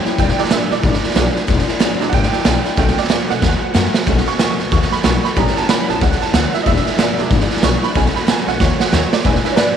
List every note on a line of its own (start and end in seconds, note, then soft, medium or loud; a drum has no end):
0.00 0.14 G3 medium
0.00 0.15 B3 medium
0.00 0.15 C#4 medium
0.00 0.17 G5 loud
0.05 0.19 G3 medium
0.05 0.19 C#4 medium
0.05 0.18 E4 medium
0.05 muted upright bass stroke medium
0.05 snare soft
0.18 0.31 E1 medium
0.18 0.38 E2 medium
0.18 0.38 B2 medium
0.18 0.39 E3 medium
0.18 0.38 G#3 medium
0.18 0.37 D4 medium
0.18 0.36 E4 medium
0.18 0.38 G5 loud
0.18 kick loud
0.18 snare soft
0.28 snare soft
0.37 0.49 E3 soft
0.37 0.81 F#3 medium
0.37 0.81 G#3 medium
0.37 0.50 G#3 soft
0.37 0.50 D4 soft
0.37 0.82 D4 medium
0.37 0.50 E4 medium
0.37 0.51 D5 loud
0.37 snare soft
0.45 snare soft
0.50 0.64 G#1 medium
0.50 0.70 E2 medium
0.50 0.70 B2 medium
0.50 0.70 E3 medium
0.50 0.70 G#3 medium
0.50 0.69 D4 medium
0.50 0.68 E4 loud
0.50 0.71 E5 medium
0.50 snare loud
0.50 hi-hat pedal medium
0.70 0.79 E1 medium
0.70 0.81 E3 soft
0.70 0.82 G#3 soft
0.70 0.82 D4 medium
0.70 0.83 E4 medium
0.70 1.34 D5 loud
0.70 snare soft
0.82 0.96 G#1 medium
0.82 1.02 E3 medium
0.82 1.03 G#3 medium
0.82 1.02 D4 medium
0.82 1.01 E4 medium
0.82 kick loud
0.82 snare soft
0.93 snare soft
1.02 1.14 E3 soft
1.02 1.15 G#3 soft
1.02 1.15 D4 soft
1.02 1.15 E4 medium
1.02 muted upright bass stroke medium
1.02 snare soft
1.10 snare soft
1.15 1.28 B1 medium
1.15 1.35 E2 medium
1.15 1.35 B2 medium
1.15 1.35 E3 loud
1.15 1.34 F#3 medium
1.15 1.35 G#3 medium
1.15 1.34 G#3 soft
1.15 1.34 D4 loud
1.15 1.34 D4 medium
1.15 1.33 E4 loud
1.15 snare loud
1.15 hi-hat pedal medium
1.34 1.47 E3 medium
1.34 1.47 G#3 medium
1.34 1.47 D4 medium
1.34 1.47 E4 medium
1.34 muted upright bass stroke medium
1.34 snare soft
1.47 1.61 E1 loud
1.47 1.67 E2 medium
1.47 1.67 B2 medium
1.47 1.68 E3 medium
1.47 1.68 G#3 loud
1.47 1.67 D4 medium
1.47 1.66 E4 loud
1.47 kick loud
1.47 snare soft
1.59 snare soft
1.67 1.79 E3 medium
1.67 1.80 G#3 medium
1.67 1.80 D4 medium
1.67 1.80 E4 medium
1.67 muted upright bass stroke medium
1.67 snare soft
1.80 1.93 G#1 medium
1.80 2.00 E2 medium
1.80 2.00 B2 loud
1.80 2.00 E3 loud
1.80 2.00 G#3 loud
1.80 1.99 D4 loud
1.80 1.98 E4 loud
1.80 snare loud
1.80 hi-hat pedal medium
1.99 2.08 E1 medium
1.99 2.11 E3 medium
1.99 2.43 F#3 medium
1.99 2.43 G#3 medium
1.99 2.12 G#3 medium
1.99 2.12 D4 medium
1.99 2.43 D4 medium
1.99 2.12 E4 medium
1.99 snare soft
2.10 2.25 G#1 medium
2.10 2.32 E3 medium
2.10 2.32 G#3 medium
2.10 2.31 D4 medium
2.10 2.12 F#5 medium
2.10 kick loud
2.10 snare soft
2.14 2.30 E4 medium
2.14 2.76 G5 loud
2.23 snare soft
2.31 2.44 E3 soft
2.31 2.44 G#3 soft
2.31 2.44 D4 soft
2.31 2.44 E4 medium
2.31 snare soft
2.44 2.58 B1 medium
2.44 2.64 E2 medium
2.44 2.65 B2 medium
2.44 2.65 E3 medium
2.44 2.64 G#3 medium
2.44 2.63 D4 medium
2.44 2.62 E4 medium
2.44 snare loud
2.44 hi-hat pedal medium
2.64 2.77 E3 medium
2.64 2.77 G#3 medium
2.64 2.77 D4 medium
2.64 2.77 E4 medium
2.64 snare soft
2.77 2.90 B1 medium
2.77 2.97 B2 medium
2.77 2.97 D#3 medium
2.77 3.01 D#3 medium
2.77 2.97 A3 medium
2.77 3.01 A3 medium
2.77 2.97 B3 medium
2.77 3.02 C#4 medium
2.77 2.95 F#4 medium
2.77 2.97 G5 medium
2.77 kick loud
2.77 snare soft
2.88 snare soft
2.96 3.09 A3 soft
2.96 3.09 B3 soft
2.96 3.09 F#4 medium
2.96 3.09 D5 loud
2.96 muted upright bass stroke medium
2.96 snare soft
3.04 snare soft
3.09 3.23 D#2 medium
3.09 3.29 B2 medium
3.09 3.29 D#3 medium
3.09 3.30 A3 medium
3.09 3.29 B3 loud
3.09 3.27 F#4 loud
3.09 3.30 D5 loud
3.09 snare loud
3.09 hi-hat pedal medium
3.28 3.37 B1 medium
3.28 3.41 D#3 medium
3.28 3.41 A3 soft
3.28 3.41 B3 soft
3.28 3.41 C#4 medium
3.28 3.42 F#4 medium
3.28 3.93 F#5 loud
3.28 snare soft
3.41 3.55 D#2 medium
3.41 3.61 D#3 medium
3.41 3.62 A3 medium
3.41 3.61 B3 medium
3.41 3.59 F#4 medium
3.41 kick loud
3.41 snare medium
3.60 3.74 A3 soft
3.60 3.74 B3 medium
3.60 3.74 F#4 medium
3.60 muted upright bass stroke medium
3.74 3.87 F#2 medium
3.74 3.94 B2 medium
3.74 3.94 D#3 medium
3.74 3.95 A3 medium
3.74 3.94 B3 medium
3.74 3.92 F#4 medium
3.74 snare medium
3.74 hi-hat pedal medium
3.94 4.06 A3 medium
3.94 4.06 B3 medium
3.94 4.07 F#4 medium
3.94 snare medium
4.06 4.20 B1 medium
4.06 4.27 B2 medium
4.06 4.56 D#3 medium
4.06 4.27 D#3 medium
4.06 4.27 A3 medium
4.06 4.57 A3 medium
4.06 4.26 B3 loud
4.06 4.57 C#4 medium
4.06 4.25 F#4 medium
4.06 kick loud
4.06 snare soft
4.17 snare soft
4.26 4.39 A3 soft
4.26 4.39 B3 soft
4.26 4.39 F#4 medium
4.26 4.59 C#6 loud
4.26 muted upright bass stroke medium
4.26 snare soft
4.39 4.52 D#2 medium
4.39 4.59 B2 medium
4.39 4.59 D#3 medium
4.39 4.59 A3 medium
4.39 4.58 B3 medium
4.39 4.57 F#4 loud
4.39 snare loud
4.39 hi-hat pedal medium
4.58 4.68 B1 medium
4.58 4.71 A3 soft
4.58 4.72 B3 medium
4.58 4.71 F#4 medium
4.58 snare soft
4.71 4.84 D#2 medium
4.71 4.91 D#3 medium
4.71 4.92 A3 medium
4.71 4.91 B3 medium
4.71 4.90 F#4 medium
4.71 4.91 C#6 loud
4.71 kick loud
4.71 snare soft
4.82 snare soft
4.91 5.03 A3 soft
4.91 5.03 B3 soft
4.91 5.04 F#4 medium
4.91 5.04 B5 loud
4.91 muted upright bass stroke medium
4.91 snare soft
5.03 5.17 B1 medium
5.03 5.24 B2 medium
5.03 5.24 D#3 medium
5.03 5.24 A3 medium
5.03 5.23 B3 medium
5.03 5.22 F#4 medium
5.03 5.24 C#6 loud
5.03 snare loud
5.03 hi-hat pedal medium
5.23 5.36 A3 soft
5.23 5.37 B3 medium
5.23 5.36 F#4 medium
5.23 5.37 B5 loud
5.23 snare soft
5.36 5.49 A1 loud
5.36 5.56 A2 medium
5.36 5.56 E3 medium
5.36 5.87 G3 medium
5.36 5.56 G3 medium
5.36 5.87 B3 medium
5.36 5.88 C#4 medium
5.36 5.56 C#4 medium
5.36 5.55 E4 medium
5.36 5.56 A#5 loud
5.36 kick loud
5.36 snare soft
5.47 snare soft
5.56 5.68 G3 soft
5.56 5.69 C#4 medium
5.56 5.69 E4 medium
5.56 5.69 A5 loud
5.56 muted upright bass stroke medium
5.56 snare soft
5.69 5.81 C#2 medium
5.69 5.89 A2 medium
5.69 5.89 E3 medium
5.69 5.89 G3 medium
5.69 5.89 C#4 medium
5.69 5.87 E4 medium
5.69 5.89 B5 loud
5.69 snare loud
5.69 hi-hat pedal medium
5.88 5.97 A1 medium
5.88 6.00 G3 medium
5.88 6.01 G3 soft
5.88 6.00 B3 soft
5.88 6.00 C#4 medium
5.88 6.01 C#4 medium
5.88 6.01 E4 medium
5.88 6.02 A5 loud
5.88 snare soft
6.01 6.14 C#2 medium
6.01 6.21 E3 medium
6.01 6.21 G3 medium
6.01 6.21 C#4 medium
6.01 6.19 E4 medium
6.01 6.21 F#5 loud
6.01 kick loud
6.01 snare soft
6.12 snare soft
6.21 6.34 G3 soft
6.21 6.34 C#4 medium
6.21 6.33 E4 medium
6.21 6.34 A5 loud
6.21 muted upright bass stroke medium
6.21 snare soft
6.33 6.46 D2 medium
6.33 6.53 A2 medium
6.33 6.54 E3 medium
6.33 6.54 G3 medium
6.33 6.54 C#4 medium
6.33 6.52 E4 medium
6.33 6.53 F#5 loud
6.33 snare loud
6.33 hi-hat pedal medium
6.53 6.66 G3 medium
6.53 6.67 C#4 medium
6.53 6.66 E4 medium
6.53 6.66 E5 medium
6.53 muted upright bass stroke medium
6.53 snare soft
6.62 6.79 E1 loud
6.62 6.86 E2 medium
6.62 6.86 B2 medium
6.62 6.65 D#5 medium
6.62 kick loud
6.62 snare soft
6.67 6.86 E3 medium
6.67 6.86 G#3 medium
6.67 6.85 D4 medium
6.67 6.84 E4 medium
6.67 7.29 E5 loud
6.76 snare soft
6.85 6.97 E3 soft
6.85 6.98 G#3 soft
6.85 6.98 D4 medium
6.85 6.98 E4 medium
6.85 muted upright bass stroke medium
6.85 snare soft
6.98 7.11 G#1 medium
6.98 7.18 E2 medium
6.98 7.18 B2 medium
6.98 7.18 E3 medium
6.98 7.18 G#3 medium
6.98 7.17 D4 medium
6.98 7.16 E4 loud
6.98 snare loud
6.98 hi-hat pedal medium
7.17 7.26 E1 medium
7.17 7.29 E3 medium
7.17 7.61 F#3 medium
7.17 7.61 G#3 medium
7.17 7.30 G#3 medium
7.17 7.31 D4 medium
7.17 7.61 D4 medium
7.17 7.30 E4 medium
7.17 snare soft
7.30 7.43 G#1 medium
7.30 7.50 E3 medium
7.30 7.50 G#3 medium
7.30 7.50 D4 medium
7.30 7.49 E4 medium
7.30 kick loud
7.30 snare soft
7.40 snare soft
7.50 7.62 E3 soft
7.50 7.62 G#3 medium
7.50 7.62 D4 medium
7.50 7.63 E4 medium
7.50 muted upright bass stroke medium
7.50 snare soft
7.57 snare soft
7.62 7.75 B1 loud
7.62 7.82 E2 medium
7.62 7.83 B2 medium
7.62 7.83 E3 medium
7.62 7.82 G#3 medium
7.62 7.82 D4 medium
7.62 7.81 E4 medium
7.62 7.83 C#6 loud
7.62 snare loud
7.62 hi-hat pedal medium
7.82 7.94 E3 medium
7.82 7.95 G#3 medium
7.82 7.95 D4 medium
7.82 7.95 E4 medium
7.82 7.96 B5 loud
7.82 muted upright bass stroke medium
7.82 snare soft
7.94 8.08 B1 medium
7.94 8.15 B2 medium
7.94 8.15 D#3 medium
7.94 8.19 D#3 medium
7.94 8.14 A3 medium
7.94 8.19 A3 medium
7.94 8.14 B3 medium
7.94 8.19 C#4 medium
7.94 8.12 F#4 medium
7.94 8.15 G#5 medium
7.94 kick loud
7.94 snare soft
8.06 snare soft
8.13 8.26 A3 soft
8.13 8.27 B3 medium
8.13 8.27 F#4 medium
8.13 8.28 B5 medium
8.13 muted upright bass stroke medium
8.13 snare soft
8.27 8.39 D#2 medium
8.27 8.47 B2 medium
8.27 8.47 D#3 medium
8.27 8.47 A3 medium
8.27 8.46 B3 loud
8.27 8.45 F#4 medium
8.27 8.47 G#5 medium
8.27 snare loud
8.27 hi-hat pedal medium
8.46 8.55 B1 medium
8.46 8.59 D#3 medium
8.46 8.59 A3 soft
8.46 8.58 A3 soft
8.46 8.59 B3 medium
8.46 8.59 C#4 medium
8.46 8.59 F#4 medium
8.46 8.60 F#5 loud
8.46 snare soft
8.59 8.73 D#2 medium
8.59 8.79 D#3 medium
8.59 8.80 A3 medium
8.59 8.78 B3 medium
8.59 8.77 F#4 medium
8.59 8.80 C#5 loud
8.59 kick loud
8.59 snare medium
8.78 8.91 A3 soft
8.78 8.92 B3 soft
8.78 8.92 F#4 medium
8.78 8.93 F#5 loud
8.78 muted upright bass stroke medium
8.78 snare medium
8.92 9.05 D#2 loud
8.92 9.12 B2 medium
8.92 9.12 D#3 medium
8.92 9.12 A3 medium
8.92 9.11 B3 medium
8.92 9.10 F#4 medium
8.92 9.12 C#5 loud
8.92 snare medium
8.92 hi-hat pedal medium
9.11 9.25 A3 soft
9.11 9.25 B3 medium
9.11 9.24 F#4 medium
9.11 9.25 D5 loud
9.11 muted upright bass stroke medium
9.11 snare loud
9.24 9.38 E1 medium
9.24 9.44 E2 medium
9.24 9.44 B2 medium
9.24 9.45 E3 medium
9.24 9.44 G#3 medium
9.24 9.43 D4 medium
9.24 9.42 E4 medium
9.24 9.37 B4 medium
9.24 9.37 E5 medium
9.24 9.37 G#5 loud
9.24 kick loud
9.24 snare soft
9.35 snare soft
9.43 9.56 E3 soft
9.43 9.56 G#3 medium
9.43 9.57 D4 medium
9.43 9.56 E4 medium
9.43 9.52 B4 medium
9.43 9.52 E5 medium
9.43 9.52 G#5 loud
9.43 muted upright bass stroke medium
9.43 snare soft
9.52 9.75 B4 medium
9.52 9.55 C#5 medium
9.57 9.70 G#1 medium
9.57 9.77 E2 medium
9.57 9.77 B2 medium
9.57 9.77 E3 medium
9.57 9.76 G#3 medium
9.57 9.75 D4 medium
9.57 9.74 E4 loud
9.57 9.69 B4 medium
9.57 9.76 D5 loud
9.57 9.69 E5 medium
9.57 9.69 F#5 medium
9.57 snare loud
9.57 hi-hat pedal medium